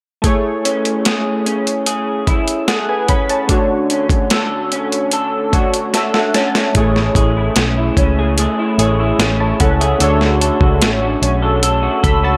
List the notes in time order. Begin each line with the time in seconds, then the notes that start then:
0.22 A3 E4 G#4, kick, closed hi-hat
0.27 C#5
0.65 C#4, closed hi-hat
0.85 closed hi-hat
1.05 G#4, snare, closed hi-hat
1.46 C#4, closed hi-hat
1.67 closed hi-hat
1.86 G#4, closed hi-hat
2.27 E4, kick, closed hi-hat
2.48 closed hi-hat
2.68 G#4 A4 F#5, snare, closed hi-hat
2.89 B4 G#5
3.08 C#4 B5, kick, closed hi-hat
3.29 C#5 A5, closed hi-hat
3.48 D3 A3 D4 F#4, kick, closed hi-hat
3.53 C#5
3.90 C#4, closed hi-hat
4.10 kick, closed hi-hat
4.30 A4, snare, closed hi-hat
4.72 C#4, closed hi-hat
4.92 closed hi-hat
5.11 A4, closed hi-hat
5.52 A3 D4 F#4 C#5, kick, closed hi-hat
5.74 closed hi-hat
5.94 A4 E5, snare, closed hi-hat
6.14 F#5, snare
6.34 C#4 A5, snare, closed hi-hat
6.55 snare, closed hi-hat
6.73 A1 A3 E4 G#4, kick, closed hi-hat
6.77 G#4 C#5
6.96 E4, snare
7.15 A1 G#4, kick, closed hi-hat
7.37 E4
7.56 B1 C#4, snare, closed hi-hat
7.78 E4
7.97 C#2 C#4, kick, closed hi-hat
8.19 G#4
8.38 A3 G#4, closed hi-hat
8.59 E4
8.78 A1 A3 E4 G#4 C#5, closed hi-hat
8.99 E4
9.19 A1 C#4, snare, closed hi-hat
9.40 E4 C#5 A5
9.60 C#2 C#4 A4 F#5, kick, closed hi-hat
9.81 G#4 E5, closed hi-hat
9.99 D2 D3 A3 D4 F#4 A4, closed hi-hat
10.04 C#5
10.21 F#4, snare
10.41 A4, closed hi-hat
10.61 C#2 F#4, kick
10.82 A1 C#4, snare, closed hi-hat
11.02 F#4
11.22 B1 C#4, closed hi-hat
11.42 A4
11.63 A4, closed hi-hat
11.83 F#4
12.03 C#2 A4 B5, kick, closed hi-hat
12.23 F#4 A5